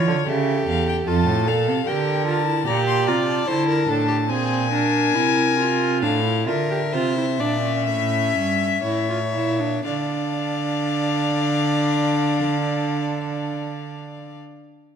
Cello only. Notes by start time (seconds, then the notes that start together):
0.07 D3
0.27 C#3
0.67 E2
1.07 F2
1.27 A2
1.47 A#2
1.67 C3
1.87 D3
2.67 A#2
3.08 C3
3.48 D3
3.89 A2
4.31 A#2
5.16 C3
6.03 A2
6.48 D3
6.93 C3
7.40 A#2
7.87 A2
8.35 G2
8.84 A2
9.35 A#2
9.86 D3